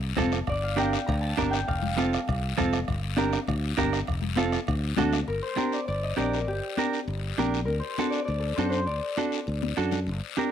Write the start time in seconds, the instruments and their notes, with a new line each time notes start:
Already playing: fingered electric bass C2
0.17 fingered electric bass F1, clean electric guitar C4 F4 A4, bombo low, bombo rim, high conga, low conga, short guiro
0.32 bombo rim, short guiro
0.47 fingered electric bass G1, harp D5, bombo low, bombo rim, high conga, long guiro
0.64 harp F5
0.76 clean electric guitar D4 G4 A#4, harp G5, bombo rim, high conga, short guiro
0.93 bombo rim, short guiro
1.06 fingered electric bass D2, harp A#5, bombo low, bombo rim, long guiro
1.21 harp A5
1.37 fingered electric bass G1, clean electric guitar D4 G4 A#4, bombo low, bombo rim, high conga, short guiro
1.51 harp G5, bombo rim, short guiro
1.68 fingered electric bass F1, harp F5, bombo low, bombo rim, high conga, long guiro
1.83 low conga
1.97 clean electric guitar C4 F4 A4, bombo rim, high conga, short guiro
2.13 bombo rim, short guiro
2.27 fingered electric bass C2, bombo low, bombo rim, high conga, long guiro
2.58 fingered electric bass F1, clean electric guitar C4 F4 A4, bombo low, bombo rim, high conga, low conga, short guiro
2.73 bombo rim, short guiro
2.87 fingered electric bass G1, bombo low, bombo rim, high conga, long guiro
3.17 clean electric guitar D4 G4 A#4, bombo rim, high conga, short guiro
3.33 bombo rim, short guiro
3.47 fingered electric bass D2, bombo low, bombo rim, high conga, long guiro
3.77 fingered electric bass G1, clean electric guitar D4 G4 A#4, bombo low, bombo rim, high conga, short guiro
3.93 bombo rim, short guiro
4.07 fingered electric bass F1, bombo low, bombo rim, long guiro
4.22 low conga
4.36 clean electric guitar C4 F4 A4, bombo rim, high conga, short guiro
4.52 bombo rim, short guiro
4.66 fingered electric bass D2, bombo low, bombo rim, high conga, long guiro
4.97 fingered electric bass D2, clean electric guitar D4 F#4 A4, bombo low, bombo rim, high conga, low conga, short guiro
5.13 bombo rim, short guiro
5.28 fingered electric bass G1, harp A#4, high conga, long guiro
5.42 harp C5
5.57 clean electric guitar D4 G4 A#4, high conga, short guiro
5.72 harp D5, short guiro
5.88 fingered electric bass G1, harp D5, high conga, long guiro
6.03 harp D#5
6.17 fingered electric bass A#1, clean electric guitar D4 G4 A#4, harp D5, high conga, short guiro
6.33 harp A#4, short guiro
6.48 fingered electric bass G1, harp G4, high conga, long guiro
6.77 clean electric guitar D4 G4 A#4, high conga, short guiro
6.93 short guiro
7.08 fingered electric bass G1, high conga, long guiro
7.38 fingered electric bass A#1, clean electric guitar D4 G4 A#4, high conga, short guiro
7.54 short guiro
7.65 fingered electric bass D2, harp A#4, high conga, long guiro
7.80 harp C5
7.98 clean electric guitar D4 F#4 A4, high conga, short guiro
8.10 harp D5, short guiro
8.25 fingered electric bass D2, harp D5, high conga, long guiro
8.40 harp A4
8.56 fingered electric bass F#2, clean electric guitar D4 F#4 A4, harp C5, high conga, short guiro
8.70 harp C5, short guiro
8.86 fingered electric bass D2, harp D5, high conga, long guiro
9.17 clean electric guitar D4 F#4 A4, high conga, short guiro
9.32 short guiro
9.47 fingered electric bass D2, high conga, long guiro
9.63 high conga
9.77 fingered electric bass F#2, clean electric guitar D4 F#4 A4, short guiro
9.91 low conga, short guiro
10.07 fingered electric bass G1, high conga, long guiro
10.36 clean electric guitar D4 G4 A#4, high conga, short guiro